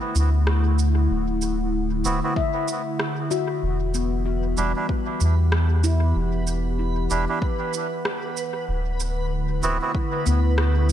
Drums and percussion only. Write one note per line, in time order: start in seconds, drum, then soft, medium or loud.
0.15 shaker soft
0.47 cross-stick medium
0.79 shaker soft
1.42 shaker soft
2.05 shaker soft
2.36 kick medium
2.68 shaker medium
2.99 cross-stick medium
3.31 shaker soft
3.94 shaker soft
4.57 shaker medium
4.89 kick loud
5.21 shaker medium
5.52 cross-stick medium
5.84 shaker medium
6.47 shaker medium
7.10 shaker medium
7.42 kick loud
7.74 shaker medium
8.05 cross-stick medium
8.37 shaker medium
9.00 shaker soft
9.63 shaker soft
9.95 kick loud
10.26 shaker medium
10.58 cross-stick medium